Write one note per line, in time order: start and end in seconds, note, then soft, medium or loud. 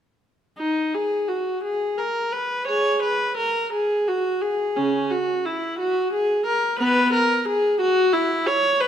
0.58 0.91 D#4 medium
0.94 1.29 G#4 medium
1.28 1.63 F#4 medium
1.64 1.97 G#4 medium
1.98 2.33 A#4 medium
2.32 2.67 B4 medium
2.67 3.00 G#4 medium
2.67 3.02 C#5 medium
3.02 3.37 B4 medium
3.37 3.72 A#4 medium
3.73 4.07 G#4 medium
4.08 4.42 F#4 medium
4.41 4.76 G#4 medium
4.77 5.09 C#3 medium
4.77 5.11 C#4 medium
5.11 5.45 F#4 medium
5.45 5.79 E4 medium
5.79 6.12 F#4 medium
6.13 6.46 G#4 medium
6.46 6.79 A#4 medium
6.79 7.10 B3 medium
6.79 7.12 B4 medium
7.13 7.46 A#4 medium
7.48 7.80 G#4 medium
7.81 8.13 F#4 loud
8.13 8.47 E4 medium
8.47 8.80 C#5 medium
8.80 8.88 B4 medium